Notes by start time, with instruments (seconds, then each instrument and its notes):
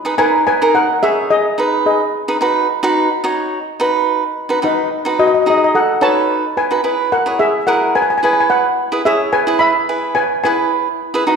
0.05 cavaquinho D#4 G#4 B4
0.18 cavaquinho D#4 G#4 A#4, steel pan B4 G#5
0.47 steel pan B4 G#5
0.62 cavaquinho D#4 G#4 A#4
0.75 steel pan A#4 F#5
1.03 cavaquinho D#4 G#4 C#5, steel pan G#4 E5
1.30 steel pan G#4 D#5
1.58 cavaquinho D#4 G#4 B4
1.86 steel pan G#4 D#5
2.28 cavaquinho D#4 G#4 B4
2.41 cavaquinho D#4 F#4 B4
2.83 cavaquinho D#4 F#4 B4
3.24 cavaquinho D#4 F#4 C#5
3.80 cavaquinho D#4 F#4 B4
4.49 cavaquinho D#4 F#4 B4
4.62 cavaquinho D#4 F#4 B4, steel pan D#4 B4
5.05 cavaquinho D#4 F#4 B4
5.19 steel pan F#4 D#5
5.27 steel pan D#5
5.35 steel pan D#5
5.42 steel pan D#5
5.46 cavaquinho D#4 F#4 G#4, steel pan D#5
5.58 steel pan D#5
5.64 steel pan D#5
5.75 steel pan A4 F#5
6.01 cavaquinho D#4 F#4 B4, steel pan C#5 A5
6.57 steel pan B4 G#5
6.71 cavaquinho D#4 F#4 B4
6.84 cavaquinho E4 G#4 B4
7.12 steel pan A#4 F#5
7.26 cavaquinho E4 G#4 C#5
7.39 steel pan G#4 E5
7.67 cavaquinho E4 G#4 A#4, steel pan A#4 F#5
7.95 steel pan B4 G#5
8.02 steel pan G#5
8.10 steel pan G#5
8.18 steel pan G#5
8.23 cavaquinho E4 G#4 B4, steel pan G#5
8.33 steel pan G#5
8.40 steel pan G#5
8.50 steel pan B4 F#5
8.92 cavaquinho E4 G#4 B4
9.05 cavaquinho E4 G#4 C#5, steel pan G#4 E5
9.33 steel pan B4 G#5
9.47 cavaquinho E4 G#4 B4
9.59 steel pan E5 B5
9.89 cavaquinho E4 G#4 B4
10.15 steel pan B4 G#5
10.44 cavaquinho E4 G#4 B4, steel pan B4 G#5
11.14 cavaquinho E4 G#4 B4
11.27 cavaquinho D#4 F#4 B4